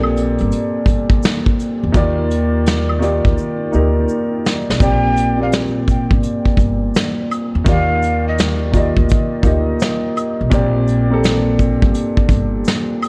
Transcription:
0.00 0.36 A#1 medium
0.00 1.97 A#2 loud
0.00 1.94 A#3 loud
0.00 4.77 A#3 medium
0.00 1.97 C4 medium
0.00 1.91 G4 medium
0.00 1.96 G4 medium
0.00 0.81 A4 loud
0.00 1.97 D5 loud
0.00 4.77 D5 medium
0.00 high woodblock medium
0.16 closed hi-hat medium
0.16 shaker soft
0.38 0.51 G1 medium
0.38 closed hi-hat soft
0.52 closed hi-hat medium
0.52 shaker medium
0.86 1.18 G1 medium
0.86 kick medium
0.86 closed hi-hat medium
0.86 shaker soft
1.10 kick loud
1.23 snare loud
1.23 closed hi-hat medium
1.23 shaker medium
1.46 kick medium
1.59 closed hi-hat medium
1.59 shaker medium
1.83 1.94 E2 medium
1.92 3.22 D#2 loud
1.92 2.83 D#3 medium
1.92 2.84 A#3 loud
1.92 4.78 D#4 medium
1.92 2.85 F4 loud
1.92 4.79 F4 medium
1.92 2.85 G4 medium
1.92 4.78 G4 medium
1.92 kick loud
1.92 closed hi-hat medium
1.92 shaker medium
1.97 2.86 D5 loud
2.31 closed hi-hat medium
2.31 shaker medium
2.66 snare loud
2.66 closed hi-hat medium
2.66 shaker medium
2.89 high woodblock medium
2.99 3.62 D#3 medium
2.99 3.63 A#3 medium
2.99 3.63 F4 medium
2.99 3.64 G4 medium
2.99 closed hi-hat medium
2.99 shaker medium
3.04 3.64 D5 loud
3.25 3.36 D2 medium
3.25 kick medium
3.38 shaker medium
3.71 4.05 D2 medium
3.71 4.63 A#3 medium
3.71 4.62 D#4 medium
3.71 4.63 F4 medium
3.71 4.64 G4 medium
3.71 shaker medium
3.75 4.64 A#4 medium
4.09 shaker medium
4.46 snare loud
4.46 shaker medium
4.70 4.80 B1 medium
4.70 snare medium
4.78 6.08 A#1 medium
4.78 5.24 A#2 medium
4.78 5.25 A#3 medium
4.78 5.25 C4 medium
4.78 5.26 G4 medium
4.78 kick loud
4.78 closed hi-hat medium
4.78 shaker medium
4.82 5.26 D5 loud
4.82 5.44 G5 loud
5.16 closed hi-hat medium
5.16 shaker soft
5.37 6.50 A#2 medium
5.37 6.51 A#3 medium
5.37 6.51 C4 medium
5.37 6.52 G4 medium
5.42 6.53 D5 medium
5.42 5.52 F5 medium
5.52 snare loud
5.52 closed hi-hat medium
5.52 shaker medium
5.88 6.10 G5 medium
5.88 kick medium
5.88 closed hi-hat medium
5.88 shaker soft
6.11 6.22 G1 medium
6.11 kick medium
6.23 closed hi-hat medium
6.23 shaker medium
6.45 kick medium
6.57 6.90 G1 medium
6.57 kick medium
6.57 closed hi-hat medium
6.57 shaker soft
6.95 snare loud
6.95 closed hi-hat medium
6.95 shaker medium
7.31 closed hi-hat medium
7.31 high woodblock medium
7.31 shaker medium
7.55 7.66 E2 medium
7.64 8.93 D#2 loud
7.64 8.55 D#3 medium
7.64 8.56 A#3 medium
7.64 8.56 F4 medium
7.64 8.57 G4 medium
7.64 kick loud
7.64 closed hi-hat medium
7.64 shaker medium
7.69 8.57 D5 loud
7.69 8.29 F5 loud
8.02 closed hi-hat medium
8.02 shaker soft
8.28 8.38 D#5 medium
8.38 snare loud
8.38 closed hi-hat medium
8.38 shaker medium
8.72 9.34 D#3 medium
8.72 9.35 A#3 medium
8.72 9.35 F4 medium
8.72 9.36 G4 medium
8.72 8.96 D5 medium
8.72 kick medium
8.72 closed hi-hat medium
8.72 shaker medium
8.76 9.36 D#5 medium
8.97 9.08 D2 medium
8.97 kick medium
9.09 kick loud
9.09 closed hi-hat medium
9.09 shaker medium
9.42 9.76 D2 loud
9.42 10.34 A#3 medium
9.42 10.33 D#4 medium
9.42 10.34 F4 medium
9.42 10.35 G4 medium
9.42 kick medium
9.42 closed hi-hat medium
9.42 shaker soft
9.46 10.35 D#5 medium
9.80 snare loud
9.80 closed hi-hat medium
9.80 shaker medium
10.17 closed hi-hat medium
10.17 high woodblock medium
10.17 shaker medium
10.41 10.51 B1 medium
10.50 11.79 A#1 loud
10.50 10.96 A#2 loud
10.50 10.97 A#3 medium
10.50 13.09 A#3 medium
10.50 10.97 C4 medium
10.50 13.09 D4 medium
10.50 13.09 G4 medium
10.50 10.97 G4 loud
10.50 kick loud
10.50 closed hi-hat medium
10.50 shaker medium
10.54 10.98 D5 loud
10.88 closed hi-hat medium
10.88 shaker medium
11.09 12.22 A#2 medium
11.09 12.23 A#3 medium
11.09 12.23 C4 medium
11.09 12.24 G4 medium
11.14 12.24 A4 loud
11.24 snare loud
11.24 closed hi-hat medium
11.24 shaker medium
11.59 kick medium
11.59 closed hi-hat medium
11.59 shaker soft
11.82 11.94 G1 medium
11.82 kick medium
11.94 closed hi-hat medium
11.94 shaker medium
12.17 kick medium
12.29 12.61 G1 medium
12.29 kick medium
12.29 closed hi-hat medium
12.29 shaker soft
12.65 snare loud
12.65 closed hi-hat medium
12.65 shaker medium
13.02 closed hi-hat medium
13.02 high woodblock medium
13.02 shaker soft

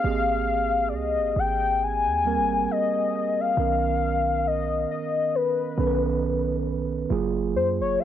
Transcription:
0.00 0.90 F5 loud
0.04 0.94 G#1 loud
0.04 1.34 A#3 medium
0.04 1.35 C4 medium
0.04 1.34 G4 medium
0.04 1.35 G#4 medium
0.89 1.19 C2 loud
0.89 0.96 D5 medium
0.94 1.38 D#5 loud
1.18 1.36 G#1 medium
1.36 2.08 G#1 medium
1.36 1.85 G5 loud
1.83 2.73 G#5 loud
2.06 2.39 D#2 medium
2.25 3.23 G3 medium
2.25 3.23 A#3 medium
2.25 3.24 C4 medium
2.25 3.24 A#4 medium
2.37 2.67 G#1 loud
2.71 3.42 D#5 loud
3.40 4.49 F5 loud
3.57 4.86 B1 loud
3.57 4.87 D#3 medium
3.57 4.87 B3 medium
3.57 4.88 C#4 medium
3.57 4.88 A#4 medium
4.47 4.91 D#5 loud
4.91 5.37 D#5 medium
5.35 6.67 B4 medium
5.78 7.06 B1 loud
5.78 6.76 D#3 medium
5.78 6.77 B3 medium
5.78 6.77 C#4 medium
5.78 5.87 A4 medium
5.87 6.81 B4 medium
7.10 7.56 F#1 loud
7.10 8.04 F#3 medium
7.10 8.04 A#3 medium
7.10 8.04 F4 medium
7.10 8.04 G#4 medium
7.55 7.81 F#2 medium
7.55 7.67 C5 medium
7.80 7.98 F#1 loud
7.80 8.01 C#5 medium
8.00 8.04 F5 loud

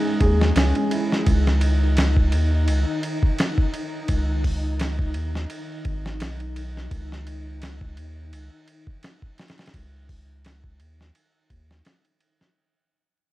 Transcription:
0.00 1.28 G#3 medium
0.00 0.56 C#4 medium
0.00 1.29 D#4 medium
0.00 0.21 G#4 medium
0.00 1.28 G#4 medium
0.21 0.52 D#2 medium
0.21 0.32 G#4 medium
0.21 kick medium
0.21 ride medium
0.42 snare soft
0.56 0.73 C#2 medium
0.56 0.74 C#4 medium
0.56 snare loud
0.56 ride medium
0.75 0.90 C#4 medium
0.75 ride soft
0.91 1.09 E4 medium
0.91 ride medium
1.12 snare soft
1.26 2.35 C#2 medium
1.26 12.58 D#4 medium
1.26 kick loud
1.26 ride medium
1.47 snare soft
1.61 ride medium
1.97 snare loud
1.97 ride medium
2.17 kick medium
2.32 2.70 D#2 medium
2.32 ride medium
2.68 2.85 C#2 medium
2.68 ride medium
3.03 ride medium
3.23 kick medium
3.38 snare loud
3.38 ride medium
3.58 kick medium
3.74 ride medium
4.08 5.16 C#2 medium
4.08 kick medium
4.08 ride medium
4.44 kick medium
4.44 open hi-hat medium
4.79 snare loud
4.79 ride medium
4.99 kick medium
5.14 5.46 D#2 medium
5.14 ride medium
5.35 snare soft
5.50 ride medium
5.85 6.22 G#1 medium
5.85 kick medium
5.85 ride medium
6.06 snare soft
6.20 6.88 B1 medium
6.20 snare loud
6.20 ride medium
6.40 ride soft
6.56 ride medium
6.77 snare soft
6.91 7.99 C#2 medium
6.91 kick loud
6.91 ride medium
7.12 snare soft
7.27 ride medium
7.62 snare loud
7.62 ride medium
7.81 kick medium
7.97 8.34 D#2 medium
7.97 ride medium
8.33 8.50 C#2 medium
8.33 ride medium
8.68 ride medium
8.87 kick medium
9.03 snare loud
9.03 ride medium
9.22 kick medium
9.38 snare medium
9.38 ride medium
9.48 snare medium
9.48 ride medium
9.58 snare medium
9.58 ride medium
9.66 snare medium
9.66 ride medium
9.74 10.82 C#2 medium
9.74 kick loud
9.74 ride medium
10.09 kick medium
10.09 open hi-hat medium
10.45 snare loud
10.45 ride medium
10.64 kick medium
10.80 11.11 D#2 medium
10.80 ride medium
11.01 snare soft
11.15 ride medium
11.50 11.82 D#2 medium
11.50 kick medium
11.50 ride medium
11.71 snare soft
11.85 snare loud
11.85 ride medium
12.05 ride soft
12.20 ride medium
12.41 snare soft

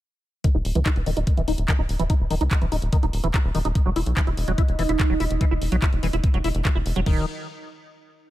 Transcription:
0.44 0.49 D#3 medium
0.44 kick loud
0.44 closed hi-hat medium
0.55 0.62 D#1 medium
0.55 0.57 D#4 medium
0.65 0.72 D#1 loud
0.65 open hi-hat loud
0.75 0.83 C#2 medium
0.75 0.80 E3 medium
0.75 closed hi-hat medium
0.86 0.90 D#4 medium
0.86 kick loud
0.86 clap loud
0.86 closed hi-hat medium
0.96 1.03 D#1 medium
0.96 closed hi-hat soft
1.06 1.14 D#1 loud
1.06 1.11 D#3 medium
1.06 open hi-hat medium
1.17 1.24 D#1 medium
1.17 1.19 D#4 medium
1.17 closed hi-hat medium
1.27 kick loud
1.27 closed hi-hat medium
1.37 1.45 D#1 medium
1.37 1.42 E3 medium
1.37 closed hi-hat soft
1.48 1.55 D#1 loud
1.48 1.52 D#4 medium
1.48 open hi-hat loud
1.58 1.65 D#1 loud
1.58 closed hi-hat medium
1.68 1.73 D#3 medium
1.68 kick loud
1.68 clap loud
1.68 closed hi-hat medium
1.79 1.86 D#1 medium
1.79 1.81 D#4 medium
1.89 1.96 D#1 loud
1.89 open hi-hat medium
1.99 2.07 D#1 medium
1.99 2.04 E3 medium
1.99 closed hi-hat medium
2.10 2.14 D#4 medium
2.10 kick loud
2.10 closed hi-hat medium
2.20 2.27 D#1 medium
2.30 2.38 D#1 loud
2.30 2.35 D#3 medium
2.30 open hi-hat loud
2.41 2.48 C#2 medium
2.41 2.43 D#4 medium
2.41 closed hi-hat medium
2.51 kick loud
2.51 clap loud
2.51 closed hi-hat medium
2.62 2.69 D#1 medium
2.62 2.66 E3 medium
2.62 closed hi-hat soft
2.72 2.79 D#1 loud
2.72 2.76 D#4 medium
2.72 open hi-hat loud
2.82 2.90 D#1 medium
2.82 closed hi-hat medium
2.93 2.97 D#3 medium
2.93 kick loud
2.93 closed hi-hat medium
3.03 3.10 D#1 medium
3.03 3.05 D#4 medium
3.03 closed hi-hat soft
3.13 3.21 D#1 medium
3.13 open hi-hat loud
3.24 3.31 D#1 medium
3.24 3.28 E3 medium
3.24 closed hi-hat medium
3.34 3.38 D#4 medium
3.34 kick loud
3.34 clap loud
3.34 closed hi-hat medium
3.44 3.52 D#1 medium
3.55 3.62 D#1 loud
3.55 3.59 D#3 medium
3.55 open hi-hat loud
3.65 3.72 D#1 medium
3.65 3.68 D#4 medium
3.65 closed hi-hat soft
3.75 7.11 D#4 medium
3.75 7.11 D#5 medium
3.75 kick loud
3.75 closed hi-hat medium
3.86 3.93 E1 medium
3.86 3.90 F#3 medium
3.96 4.03 E1 loud
3.96 4.00 E4 medium
3.96 open hi-hat loud
4.06 4.14 B1 medium
4.06 closed hi-hat medium
4.17 4.21 E3 medium
4.17 kick loud
4.17 clap loud
4.17 closed hi-hat medium
4.27 4.34 E1 medium
4.27 4.30 E4 medium
4.27 closed hi-hat soft
4.37 4.45 E1 loud
4.37 open hi-hat loud
4.48 4.55 E1 medium
4.48 4.52 F#3 medium
4.48 closed hi-hat medium
4.58 4.62 E4 medium
4.58 kick loud
4.58 closed hi-hat medium
4.68 4.76 E1 medium
4.68 closed hi-hat soft
4.79 4.86 E1 loud
4.79 4.83 E3 medium
4.79 open hi-hat loud
4.89 4.96 E1 medium
4.89 4.92 E4 medium
4.89 closed hi-hat medium
4.99 kick loud
4.99 clap loud
4.99 closed hi-hat medium
5.10 5.17 E1 medium
5.10 5.14 F#3 medium
5.20 5.28 E1 loud
5.20 5.24 E4 medium
5.20 open hi-hat medium
5.31 5.38 E1 medium
5.31 closed hi-hat medium
5.41 5.45 E3 medium
5.41 kick loud
5.41 closed hi-hat medium
5.51 5.59 E1 medium
5.51 5.54 E4 medium
5.62 5.69 E1 medium
5.62 open hi-hat loud
5.72 5.79 B1 medium
5.72 5.76 F#3 medium
5.72 closed hi-hat medium
5.82 5.87 E4 medium
5.82 kick loud
5.82 clap loud
5.82 closed hi-hat medium
5.93 6.00 E1 medium
5.93 closed hi-hat soft
6.03 6.10 E1 loud
6.03 6.07 E3 medium
6.03 open hi-hat loud
6.13 6.21 E1 medium
6.13 6.16 E4 medium
6.13 closed hi-hat medium
6.24 kick loud
6.24 closed hi-hat medium
6.34 6.41 E1 medium
6.34 6.38 F#3 medium
6.34 closed hi-hat soft
6.44 6.52 E1 loud
6.44 6.49 E4 medium
6.44 open hi-hat loud
6.55 6.62 E1 loud
6.55 closed hi-hat soft
6.65 6.69 E3 medium
6.65 kick loud
6.65 clap loud
6.65 closed hi-hat medium
6.75 6.83 E1 medium
6.75 6.78 E4 medium
6.86 6.93 E1 loud
6.86 open hi-hat loud
6.96 7.03 E1 medium
6.96 7.00 F#3 medium
6.96 closed hi-hat soft
7.06 7.26 D#1 loud
7.06 7.26 D#3 loud
7.06 kick loud
7.06 crash medium

